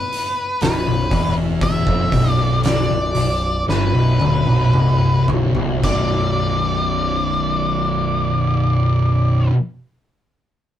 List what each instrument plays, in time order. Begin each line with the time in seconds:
Already playing: lead electric guitar B4
0.13 open hi-hat
0.61 picked electric bass B0, distorted electric guitar B1, lead electric guitar B4, snare, open hi-hat
0.86 picked electric bass B0, distorted electric guitar B1
1.11 picked electric bass E1, distorted electric guitar E2, kick, open hi-hat
1.61 lead electric guitar E5, kick, open hi-hat
1.87 picked electric bass F1, distorted electric guitar F2, kick
2.12 picked electric bass B0, distorted electric guitar B1, kick, open hi-hat
2.31 lead electric guitar D5
2.63 lead electric guitar D5, snare, open hi-hat
2.89 picked electric bass B0, distorted electric guitar B1
3.15 picked electric bass B0, distorted electric guitar B1, open hi-hat
3.68 picked electric bass G1, distorted electric guitar G2, lead electric guitar B4, snare
3.94 picked electric bass B0, distorted electric guitar B1
4.20 picked electric bass D1, distorted electric guitar D2, high tom
4.47 picked electric bass B0, distorted electric guitar B1, high tom
4.73 picked electric bass C1, distorted electric guitar C2, mid tom
5.28 picked electric bass B0, distorted electric guitar B1, floor tom
5.55 picked electric bass C1, distorted electric guitar C2, floor tom
5.82 picked electric bass B0, distorted electric guitar B1 F#2, lead electric guitar D5, kick, splash
5.86 distorted electric guitar B2